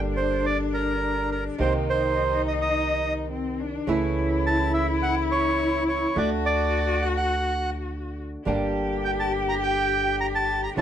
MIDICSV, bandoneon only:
0, 0, Header, 1, 2, 480
1, 0, Start_track
1, 0, Key_signature, -2, "minor"
1, 0, Tempo, 574163
1, 1331, Time_signature, 4, 2, 24, 8
1, 9040, End_track
2, 0, Start_track
2, 0, Title_t, "Bandoneon"
2, 0, Program_c, 0, 23
2, 138, Note_on_c, 0, 72, 58
2, 381, Note_off_c, 0, 72, 0
2, 381, Note_on_c, 0, 74, 72
2, 486, Note_off_c, 0, 74, 0
2, 618, Note_on_c, 0, 70, 65
2, 1088, Note_off_c, 0, 70, 0
2, 1100, Note_on_c, 0, 70, 53
2, 1206, Note_off_c, 0, 70, 0
2, 1344, Note_on_c, 0, 72, 62
2, 1449, Note_off_c, 0, 72, 0
2, 1586, Note_on_c, 0, 72, 58
2, 2025, Note_off_c, 0, 72, 0
2, 2069, Note_on_c, 0, 75, 58
2, 2119, Note_off_c, 0, 75, 0
2, 2186, Note_on_c, 0, 75, 67
2, 2623, Note_off_c, 0, 75, 0
2, 3733, Note_on_c, 0, 81, 72
2, 3949, Note_off_c, 0, 81, 0
2, 3962, Note_on_c, 0, 76, 58
2, 4068, Note_off_c, 0, 76, 0
2, 4200, Note_on_c, 0, 78, 78
2, 4306, Note_off_c, 0, 78, 0
2, 4443, Note_on_c, 0, 73, 71
2, 4882, Note_off_c, 0, 73, 0
2, 4921, Note_on_c, 0, 73, 52
2, 5161, Note_off_c, 0, 73, 0
2, 5163, Note_on_c, 0, 74, 62
2, 5268, Note_off_c, 0, 74, 0
2, 5397, Note_on_c, 0, 74, 68
2, 5868, Note_on_c, 0, 78, 55
2, 5887, Note_off_c, 0, 74, 0
2, 5922, Note_off_c, 0, 78, 0
2, 5992, Note_on_c, 0, 78, 71
2, 6440, Note_off_c, 0, 78, 0
2, 7563, Note_on_c, 0, 79, 68
2, 7617, Note_off_c, 0, 79, 0
2, 7688, Note_on_c, 0, 81, 67
2, 7795, Note_off_c, 0, 81, 0
2, 7932, Note_on_c, 0, 82, 81
2, 7984, Note_off_c, 0, 82, 0
2, 8051, Note_on_c, 0, 79, 81
2, 8495, Note_off_c, 0, 79, 0
2, 8532, Note_on_c, 0, 82, 80
2, 8584, Note_off_c, 0, 82, 0
2, 8654, Note_on_c, 0, 81, 73
2, 8873, Note_off_c, 0, 81, 0
2, 8891, Note_on_c, 0, 82, 65
2, 8944, Note_off_c, 0, 82, 0
2, 9012, Note_on_c, 0, 81, 72
2, 9040, Note_off_c, 0, 81, 0
2, 9040, End_track
0, 0, End_of_file